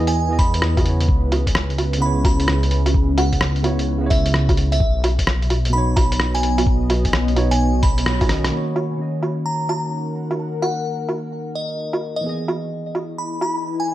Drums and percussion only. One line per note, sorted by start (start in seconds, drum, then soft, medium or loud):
0.07 closed hi-hat medium
0.39 kick loud
0.39 open hi-hat medium
0.54 closed hi-hat medium
0.62 cross-stick loud
0.77 kick loud
0.77 closed hi-hat soft
0.77 low woodblock medium
0.86 open hi-hat medium
1.01 closed hi-hat medium
1.08 kick loud
1.32 open hi-hat medium
1.32 low woodblock medium
1.47 kick medium
1.47 closed hi-hat medium
1.55 cross-stick loud
1.70 closed hi-hat soft
1.78 open hi-hat medium
1.78 low woodblock medium
1.93 closed hi-hat medium
2.25 kick loud
2.25 open hi-hat medium
2.25 low woodblock medium
2.40 closed hi-hat medium
2.48 cross-stick loud
2.63 closed hi-hat soft
2.71 open hi-hat medium
2.86 closed hi-hat medium
2.86 low woodblock medium
2.94 kick loud
3.18 open hi-hat medium
3.18 low woodblock medium
3.33 kick medium
3.33 closed hi-hat medium
3.41 cross-stick loud
3.56 closed hi-hat soft
3.64 open hi-hat medium
3.64 low woodblock medium
3.79 closed hi-hat medium
4.11 kick loud
4.11 open hi-hat medium
4.26 closed hi-hat medium
4.34 cross-stick loud
4.49 kick loud
4.49 closed hi-hat soft
4.49 low woodblock medium
4.57 open hi-hat medium
4.72 closed hi-hat medium
4.80 kick loud
5.04 open hi-hat medium
5.04 low woodblock medium
5.19 kick medium
5.19 closed hi-hat medium
5.27 cross-stick loud
5.42 closed hi-hat soft
5.50 open hi-hat medium
5.50 low woodblock medium
5.65 closed hi-hat medium
5.97 kick loud
5.97 open hi-hat medium
5.97 low woodblock medium
6.12 closed hi-hat medium
6.20 cross-stick medium
6.35 closed hi-hat soft
6.43 open hi-hat medium
6.58 closed hi-hat medium
6.58 low woodblock medium
6.67 kick loud
6.90 open hi-hat medium
6.90 low woodblock medium
7.05 kick medium
7.05 closed hi-hat medium
7.13 cross-stick loud
7.28 closed hi-hat soft
7.36 open hi-hat medium
7.36 low woodblock medium
7.51 closed hi-hat medium
7.83 kick loud
7.83 open hi-hat medium
7.98 closed hi-hat medium
8.06 cross-stick loud
8.21 kick loud
8.21 closed hi-hat soft
8.21 low woodblock medium
8.29 cross-stick medium
8.29 open hi-hat medium
8.44 cross-stick medium
8.44 closed hi-hat medium
8.76 low woodblock medium
9.23 low woodblock soft
9.69 low woodblock soft
10.31 low woodblock soft
10.62 low woodblock medium
11.09 low woodblock soft
11.93 low woodblock medium
12.48 low woodblock medium
12.95 low woodblock soft
13.41 low woodblock soft